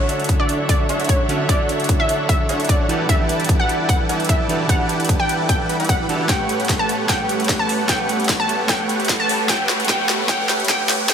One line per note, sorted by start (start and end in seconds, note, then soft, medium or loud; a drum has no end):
0.00 1.26 D3 medium
0.00 6.25 D3 medium
0.00 2.86 F#3 medium
0.00 0.87 D4 medium
0.00 6.25 E4 medium
0.00 1.27 F#4 medium
0.00 0.87 A4 medium
0.00 1.27 A4 medium
0.00 0.87 C#5 medium
0.00 0.87 E5 medium
0.00 1.28 E5 medium
0.00 2.86 E5 medium
0.00 0.87 F#5 medium
0.09 closed hi-hat medium
0.20 closed hi-hat medium
0.24 closed hi-hat medium
0.29 kick medium
0.29 closed hi-hat medium
0.40 0.65 D5 medium
0.49 closed hi-hat medium
0.69 1.04 D5 loud
0.69 kick medium
0.69 closed hi-hat medium
0.89 1.27 D4 loud
0.89 1.27 A4 medium
0.89 1.27 C#5 medium
0.89 1.27 E5 medium
0.89 1.27 F#5 loud
0.89 closed hi-hat medium
1.00 closed hi-hat medium
1.04 closed hi-hat medium
1.09 1.27 C#5 medium
1.09 kick medium
1.09 closed hi-hat medium
1.28 1.46 D3 medium
1.28 1.47 C#4 medium
1.28 1.47 D4 medium
1.28 1.47 F#4 medium
1.28 1.47 A4 medium
1.28 1.47 C#5 medium
1.28 1.47 E5 medium
1.28 1.47 F#5 loud
1.28 closed hi-hat medium
1.47 2.86 D3 medium
1.47 2.47 D4 medium
1.47 2.87 F#4 medium
1.47 2.47 A4 medium
1.47 2.87 C#5 medium
1.47 2.47 C#5 medium
1.47 1.67 D5 loud
1.47 2.47 E5 medium
1.47 2.47 F#5 medium
1.47 kick loud
1.47 closed hi-hat medium
1.51 2.88 E5 medium
1.69 closed hi-hat medium
1.80 closed hi-hat medium
1.84 closed hi-hat medium
1.89 kick medium
1.89 closed hi-hat medium
2.00 2.25 E5 medium
2.09 closed hi-hat medium
2.29 2.64 E5 loud
2.29 kick medium
2.29 closed hi-hat medium
2.49 2.87 D4 loud
2.49 2.87 A4 medium
2.49 2.87 C#5 medium
2.49 2.87 E5 medium
2.49 2.87 F#5 loud
2.49 closed hi-hat medium
2.60 closed hi-hat soft
2.65 closed hi-hat medium
2.69 2.87 D5 medium
2.69 kick medium
2.69 closed hi-hat medium
2.88 3.06 E3 medium
2.88 11.14 G3 medium
2.88 3.07 D4 medium
2.88 3.07 E4 medium
2.88 3.07 F#4 medium
2.88 3.07 G4 medium
2.88 6.26 A4 medium
2.88 3.07 A4 medium
2.88 3.07 B4 medium
2.88 3.07 D5 medium
2.88 3.07 F#5 medium
2.88 3.07 G5 medium
2.88 3.07 A5 loud
2.88 closed hi-hat medium
3.07 4.46 E3 medium
3.07 4.46 D4 medium
3.07 4.07 E4 medium
3.07 4.47 G4 medium
3.07 4.48 A4 medium
3.07 4.07 B4 medium
3.07 4.07 D5 medium
3.07 3.27 E5 loud
3.07 4.07 F#5 medium
3.07 4.07 G5 medium
3.07 4.07 A5 medium
3.07 kick medium
3.07 closed hi-hat medium
3.29 closed hi-hat medium
3.40 closed hi-hat soft
3.44 closed hi-hat medium
3.49 kick medium
3.49 closed hi-hat medium
3.60 3.85 F#5 loud
3.69 closed hi-hat medium
3.89 4.24 F#5 medium
3.89 kick loud
3.89 closed hi-hat medium
4.09 4.47 E4 loud
4.09 4.47 B4 medium
4.09 4.47 D5 medium
4.09 4.47 F#5 medium
4.09 4.47 G5 medium
4.09 4.47 A5 loud
4.09 closed hi-hat medium
4.20 closed hi-hat soft
4.25 closed hi-hat medium
4.29 4.47 E5 medium
4.29 kick medium
4.29 closed hi-hat medium
4.48 4.66 E3 medium
4.48 4.67 D4 medium
4.48 4.67 E4 medium
4.48 4.67 F#4 medium
4.48 4.67 G4 medium
4.48 4.67 A4 loud
4.48 4.67 B4 medium
4.48 4.67 D5 medium
4.48 4.67 F#5 medium
4.48 4.67 G5 medium
4.48 4.67 A5 loud
4.48 closed hi-hat medium
4.67 6.06 E3 medium
4.67 6.06 D4 medium
4.67 5.67 E4 medium
4.67 6.07 G4 medium
4.67 5.67 B4 medium
4.67 5.67 D5 medium
4.67 5.67 F#5 medium
4.67 4.87 F#5 medium
4.67 5.67 G5 medium
4.67 5.67 A5 medium
4.67 kick loud
4.67 closed hi-hat medium
4.71 6.08 A4 medium
4.89 closed hi-hat medium
5.00 closed hi-hat soft
5.05 closed hi-hat medium
5.09 kick medium
5.09 closed hi-hat medium
5.20 5.45 G5 loud
5.29 closed hi-hat medium
5.49 5.84 G5 loud
5.49 kick loud
5.49 closed hi-hat medium
5.69 5.77 E4 medium
5.69 5.77 B4 medium
5.69 5.77 D5 medium
5.69 5.77 F#5 medium
5.69 5.77 G5 medium
5.69 5.77 B5 loud
5.69 closed hi-hat medium
5.79 6.07 E4 medium
5.79 6.07 B4 medium
5.79 6.07 D5 medium
5.79 6.07 F#5 medium
5.79 6.07 G5 medium
5.79 6.07 B5 loud
5.79 closed hi-hat soft
5.85 closed hi-hat medium
5.89 6.07 F#5 medium
5.89 kick loud
5.89 closed hi-hat medium
6.08 6.26 E3 medium
6.08 6.27 D4 medium
6.08 6.27 E4 medium
6.08 6.27 F#4 medium
6.08 6.27 G4 medium
6.08 6.27 A4 loud
6.08 6.27 B4 medium
6.08 6.27 D5 medium
6.08 6.27 F#5 medium
6.08 6.27 G5 medium
6.08 6.27 A5 medium
6.08 closed hi-hat medium
6.27 7.06 A3 medium
6.27 7.08 A3 medium
6.27 11.14 B3 medium
6.27 9.46 C#4 medium
6.27 7.07 G4 medium
6.27 7.08 G4 medium
6.27 11.14 A4 medium
6.27 7.08 B4 medium
6.27 7.08 C#5 medium
6.27 7.08 F#5 medium
6.27 7.09 F#5 medium
6.27 6.47 G5 medium
6.27 kick loud
6.27 snare soft
6.27 closed hi-hat medium
6.27 riser medium
6.49 closed hi-hat medium
6.60 closed hi-hat soft
6.65 closed hi-hat medium
6.69 kick medium
6.69 snare soft
6.69 closed hi-hat medium
6.79 7.05 A5 medium
6.89 closed hi-hat medium
7.07 7.86 A3 medium
7.07 7.88 A3 medium
7.07 7.87 G4 medium
7.07 7.88 G4 medium
7.07 7.88 B4 medium
7.07 7.88 C#5 medium
7.07 7.88 F#5 medium
7.07 7.89 F#5 medium
7.07 7.27 G5 medium
7.07 kick loud
7.07 snare medium
7.07 closed hi-hat medium
7.29 closed hi-hat medium
7.40 closed hi-hat soft
7.44 closed hi-hat medium
7.49 kick medium
7.49 snare medium
7.49 closed hi-hat medium
7.59 7.85 A5 medium
7.69 open hi-hat medium
7.87 8.66 A3 medium
7.87 8.68 A3 medium
7.87 8.67 G4 medium
7.87 8.68 G4 medium
7.87 8.68 B4 medium
7.87 8.68 C#5 medium
7.87 8.68 F#5 medium
7.87 8.69 F#5 medium
7.87 8.07 G5 medium
7.87 kick loud
7.87 snare medium
7.87 closed hi-hat medium
8.09 closed hi-hat medium
8.20 closed hi-hat soft
8.24 closed hi-hat medium
8.29 kick medium
8.29 snare medium
8.29 closed hi-hat medium
8.40 8.65 A5 medium
8.49 closed hi-hat medium
8.67 9.46 A3 medium
8.67 9.48 A3 medium
8.67 9.47 G4 medium
8.67 9.48 G4 medium
8.67 9.48 B4 medium
8.67 9.48 C#5 medium
8.67 9.48 F#5 medium
8.67 8.87 G5 loud
8.67 kick loud
8.67 snare medium
8.67 closed hi-hat medium
8.71 9.49 F#5 medium
8.89 closed hi-hat medium
9.00 closed hi-hat medium
9.05 closed hi-hat medium
9.09 kick medium
9.09 snare medium
9.09 closed hi-hat medium
9.20 9.45 A5 medium
9.29 open hi-hat loud
9.47 9.86 A3 medium
9.47 9.88 A3 medium
9.47 9.87 G4 medium
9.47 9.88 G4 medium
9.47 9.88 B4 medium
9.47 9.88 C#5 medium
9.47 9.88 F#5 medium
9.47 9.67 G5 medium
9.47 kick loud
9.47 snare medium
9.47 closed hi-hat medium
9.51 9.89 F#5 medium
9.69 snare medium
9.69 closed hi-hat medium
9.80 closed hi-hat medium
9.85 10.26 A3 medium
9.85 10.27 G4 medium
9.85 closed hi-hat medium
9.89 10.28 A3 medium
9.89 10.28 G4 medium
9.89 10.28 B4 medium
9.89 10.28 C#5 medium
9.89 10.28 F#5 medium
9.89 10.29 F#5 medium
9.89 10.07 G5 loud
9.89 kick loud
9.89 snare medium
9.89 closed hi-hat medium
10.09 snare medium
10.09 closed hi-hat medium
10.27 10.66 A3 medium
10.27 10.68 A3 medium
10.27 10.67 G4 medium
10.27 10.68 G4 medium
10.27 10.68 B4 medium
10.27 10.68 C#5 medium
10.27 10.68 F#5 medium
10.27 10.47 G5 loud
10.27 kick loud
10.27 snare medium
10.27 closed hi-hat medium
10.31 10.69 F#5 medium
10.49 snare medium
10.49 closed hi-hat medium
10.60 closed hi-hat medium
10.65 11.06 A3 medium
10.65 11.07 G4 medium
10.65 closed hi-hat medium
10.69 11.08 A3 medium
10.69 11.08 G4 medium
10.69 11.08 B4 medium
10.69 11.08 C#5 medium
10.69 11.08 F#5 medium
10.69 11.09 F#5 medium
10.69 10.87 G5 loud
10.69 kick loud
10.69 snare medium
10.69 closed hi-hat medium
10.89 snare medium
10.89 open hi-hat medium
11.07 11.14 A3 medium
11.07 11.14 G4 medium
11.07 11.14 B4 medium
11.07 11.14 C#5 medium
11.07 11.14 F#5 loud
11.07 11.14 G5 loud
11.07 kick loud
11.07 snare medium
11.07 closed hi-hat medium